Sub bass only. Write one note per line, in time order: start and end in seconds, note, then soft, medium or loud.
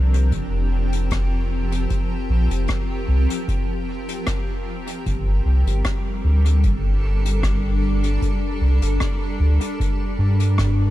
0.00 0.34 C2 medium
0.32 1.87 F1 medium
2.30 2.48 A#1 medium
2.51 2.67 F1 medium
3.08 3.27 C2 medium
5.06 5.41 G1 loud
5.45 5.64 C2 medium
5.66 5.83 G1 medium
6.24 6.65 D2 medium
6.64 8.18 G1 medium
8.61 8.80 C2 medium
8.82 8.98 G1 medium
9.40 9.59 D2 medium
10.19 10.90 G2 medium